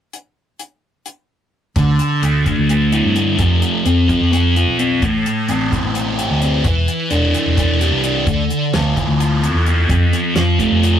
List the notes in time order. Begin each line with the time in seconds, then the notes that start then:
0.13 closed hi-hat
0.59 closed hi-hat
1.06 closed hi-hat
1.76 D2 D3, kick, closed hi-hat
1.99 closed hi-hat
2.22 D2 A3, closed hi-hat
2.46 D3, kick, closed hi-hat
2.58 D2
2.69 A3, closed hi-hat
2.92 E4, closed hi-hat
3.04 G2
3.16 A3, closed hi-hat
3.38 F2 F3, kick, closed hi-hat
3.62 closed hi-hat
3.85 F2 C4, closed hi-hat
4.09 F3, kick, closed hi-hat
4.20 F2
4.32 C4, closed hi-hat
4.55 F4, closed hi-hat
4.67 B1
4.79 C4, closed hi-hat
5.02 A1 A2, kick, closed hi-hat
5.26 closed hi-hat
5.49 A1 C4, closed hi-hat
5.72 E3, kick, closed hi-hat
5.83 A1
5.94 C4, closed hi-hat
6.18 G4, closed hi-hat
6.30 D2
6.41 C4, closed hi-hat
6.64 E1 E3, kick, closed hi-hat
6.88 closed hi-hat
7.10 E1 D4, closed hi-hat
7.34 E3, closed hi-hat
7.46 E1
7.57 D4, kick, closed hi-hat
7.81 G4, closed hi-hat
7.91 C2
8.04 D4, closed hi-hat
8.27 D2 D3, kick, closed hi-hat
8.50 closed hi-hat
8.73 D2 F4, snare, closed hi-hat
8.96 E3, kick, closed hi-hat
9.08 D2
9.20 F4, closed hi-hat
9.42 A4, closed hi-hat
9.53 E2
9.66 F4, closed hi-hat
9.89 F2 F3, kick, closed hi-hat
10.13 snare, closed hi-hat
10.35 F2 F4, snare, closed hi-hat
10.59 A3, kick, closed hi-hat
10.70 F2
10.82 F4, closed hi-hat